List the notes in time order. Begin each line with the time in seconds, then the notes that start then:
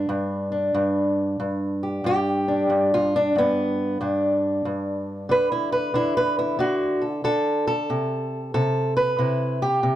Already playing: B3 D4
0.09 G2
0.52 D4
0.75 G2
1.40 G2
1.83 G4
2.04 G2 G4
2.48 D4
2.70 G2
2.94 F4
3.16 D4
3.35 G2 B3
4.01 G2 D4
4.65 G2
5.29 D3 B4
5.52 E4
5.72 B4
5.94 D3 E4
6.17 B4
6.39 E4
6.59 D3 F#4
7.02 A4
7.24 D3 A4
7.67 A4
7.90 C3
8.54 C3 A4
8.97 B4
9.19 C3 E4
9.62 G4
9.83 C3